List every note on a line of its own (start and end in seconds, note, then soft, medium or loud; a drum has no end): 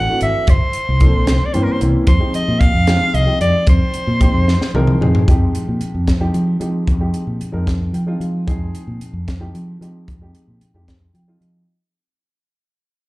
0.00 0.22 F#5 medium
0.09 0.49 E3 medium
0.09 0.49 A3 medium
0.09 0.49 C4 medium
0.09 0.49 D4 medium
0.09 0.49 F#4 medium
0.09 muted fingered electric bass stroke soft
0.21 0.33 G#1 medium
0.21 0.51 E5 medium
0.21 closed hi-hat medium
0.47 0.60 G1 medium
0.47 1.47 C5 medium
0.47 kick loud
0.47 closed hi-hat medium
0.73 muted fingered electric bass stroke soft
0.73 closed hi-hat medium
0.89 1.11 C2 medium
1.00 1.27 F3 medium
1.00 1.28 A#3 medium
1.00 1.27 C4 medium
1.00 1.28 D4 medium
1.00 1.28 A4 medium
1.00 kick medium
1.00 closed hi-hat medium
1.15 1.26 A#1 medium
1.27 1.39 C2 medium
1.27 snare loud
1.27 closed hi-hat medium
1.42 1.55 D5 medium
1.42 muted fingered electric bass stroke soft
1.53 1.66 G2 medium
1.53 1.77 E3 medium
1.53 1.77 A#3 medium
1.53 1.77 C4 medium
1.53 1.77 C#4 medium
1.53 1.77 G4 medium
1.53 1.65 C5 medium
1.53 closed hi-hat medium
1.64 1.74 A#4 medium
1.69 1.81 C5 medium
1.69 muted fingered electric bass stroke soft
1.80 1.93 C2 medium
1.80 2.07 E3 medium
1.80 2.07 A#3 medium
1.80 2.08 C4 medium
1.80 2.08 C#4 medium
1.80 2.08 E4 medium
1.80 closed hi-hat medium
2.07 2.19 F2 loud
2.07 2.33 C5 medium
2.07 kick loud
2.07 closed hi-hat medium
2.20 2.77 F3 medium
2.20 2.78 G#3 medium
2.20 2.78 C4 medium
2.20 2.78 D#4 medium
2.20 2.78 G4 medium
2.34 2.61 D#5 medium
2.34 muted fingered electric bass stroke soft
2.34 closed hi-hat medium
2.48 2.71 A#2 medium
2.60 3.16 F5 loud
2.60 kick medium
2.60 closed hi-hat medium
2.74 2.97 F2 medium
2.87 3.22 F3 medium
2.87 3.22 G#3 medium
2.87 3.22 C4 medium
2.87 3.22 D#4 medium
2.87 3.22 G4 medium
2.87 snare loud
2.87 closed hi-hat medium
3.02 muted fingered electric bass stroke soft
3.14 3.26 C2 medium
3.14 3.40 D#5 medium
3.14 closed hi-hat medium
3.26 4.07 F3 medium
3.26 4.07 G#3 medium
3.26 4.07 C4 medium
3.26 4.07 D#4 medium
3.26 4.07 G4 medium
3.26 muted fingered electric bass stroke soft
3.41 3.52 F2 medium
3.41 3.66 D5 medium
3.41 closed hi-hat medium
3.67 3.79 F2 medium
3.67 4.97 C5 medium
3.67 kick loud
3.67 closed hi-hat medium
3.94 muted fingered electric bass stroke soft
3.94 closed hi-hat medium
4.07 4.30 A#2 medium
4.20 4.66 F3 medium
4.20 4.66 G#3 medium
4.20 4.66 C4 medium
4.20 4.67 D#4 medium
4.20 4.67 G4 medium
4.20 kick medium
4.20 closed hi-hat medium
4.33 4.57 F2 medium
4.48 snare medium
4.61 muted fingered electric bass stroke soft
4.61 snare medium
4.74 4.86 C2 medium
4.74 4.97 F3 medium
4.74 4.97 G#3 medium
4.74 4.98 C4 medium
4.74 4.97 D#4 medium
4.74 4.98 A#4 loud
4.74 high tom medium
4.87 mid tom medium
5.01 5.12 F2 medium
5.01 5.26 F3 medium
5.01 5.27 G#3 medium
5.01 5.27 C4 medium
5.01 5.27 D#4 medium
5.01 5.28 G#4 medium
5.01 mid tom medium
5.15 floor tom medium
5.28 5.51 F2 medium
5.28 6.08 F3 medium
5.28 6.08 G#3 medium
5.28 6.08 C4 medium
5.28 6.08 D#4 medium
5.28 6.08 G4 medium
5.28 kick loud
5.28 closed hi-hat medium
5.55 closed hi-hat medium
5.68 5.79 A#2 medium
5.81 muted fingered electric bass stroke soft
5.81 closed hi-hat medium
5.95 6.29 F2 medium
6.08 kick medium
6.08 snare medium
6.08 closed hi-hat medium
6.20 6.55 F3 medium
6.20 6.55 G#3 medium
6.20 6.55 C4 medium
6.20 6.55 D#4 medium
6.20 6.55 G4 medium
6.34 6.57 F3 medium
6.34 closed hi-hat medium
6.60 6.95 F3 medium
6.60 6.89 F3 medium
6.60 6.95 G#3 medium
6.60 6.95 C4 medium
6.60 6.95 D#4 medium
6.60 6.95 G4 medium
6.60 closed hi-hat medium
6.88 7.11 F2 medium
6.88 kick medium
6.88 closed hi-hat medium
7.00 7.46 F3 medium
7.00 7.46 G#3 medium
7.00 7.47 C4 medium
7.00 7.47 D#4 medium
7.00 7.47 G4 medium
7.14 closed hi-hat medium
7.27 7.39 A#2 medium
7.41 muted fingered electric bass stroke soft
7.41 closed hi-hat medium
7.52 7.88 F2 medium
7.52 7.99 F3 medium
7.52 7.99 G#3 medium
7.52 7.99 C4 medium
7.52 7.99 D#4 medium
7.52 8.00 A#4 medium
7.67 kick medium
7.67 snare medium
7.67 closed hi-hat medium
7.93 8.17 F3 medium
7.93 8.19 G5 medium
7.93 closed hi-hat medium
8.06 8.42 F3 medium
8.06 8.41 G#3 medium
8.06 8.42 C4 medium
8.06 8.42 D#4 medium
8.06 8.42 F4 medium
8.20 8.49 F3 medium
8.20 8.45 F5 medium
8.20 closed hi-hat soft
8.47 8.71 F2 medium
8.47 9.28 F3 medium
8.47 9.28 G#3 medium
8.47 9.28 C4 medium
8.47 9.28 D#4 medium
8.47 9.28 G#4 medium
8.47 kick medium
8.47 closed hi-hat medium
8.75 closed hi-hat medium
8.87 8.99 A#2 medium
9.01 muted fingered electric bass stroke soft
9.01 closed hi-hat medium
9.13 9.48 F2 medium
9.28 kick medium
9.28 snare medium
9.28 closed hi-hat medium
9.39 9.75 F3 medium
9.39 9.75 G#3 medium
9.39 9.75 C4 medium
9.39 9.75 D#4 medium
9.39 9.75 G4 medium
9.55 9.78 F3 medium
9.55 closed hi-hat medium
9.81 10.16 F3 medium
9.81 10.09 F3 medium
9.81 10.16 G#3 medium
9.81 10.16 C4 medium
9.81 10.16 D#4 medium
9.81 10.16 G4 medium
9.81 closed hi-hat medium
10.08 10.31 F2 medium
10.08 kick medium
10.08 closed hi-hat medium
10.21 10.67 F3 medium
10.21 10.67 G#3 medium
10.21 10.68 C4 medium
10.21 10.68 D#4 medium
10.21 10.68 G4 medium
10.35 closed hi-hat medium
10.48 10.59 A#2 medium
10.61 muted fingered electric bass stroke soft
10.61 closed hi-hat medium
10.74 11.09 F2 medium
10.74 11.20 F3 medium
10.74 11.21 G#3 medium
10.74 11.21 C4 medium
10.74 11.21 D#4 medium
10.74 11.21 G4 medium
10.88 kick medium
10.88 snare medium
10.88 closed hi-hat medium
11.14 11.38 F3 medium
11.14 11.40 G5 medium
11.14 closed hi-hat soft
11.28 11.63 F3 medium
11.28 11.63 G#3 medium
11.28 11.63 C4 medium
11.28 11.63 D#4 medium
11.28 11.63 F4 medium
11.40 11.64 F3 medium
11.40 11.66 D#5 medium
11.40 closed hi-hat soft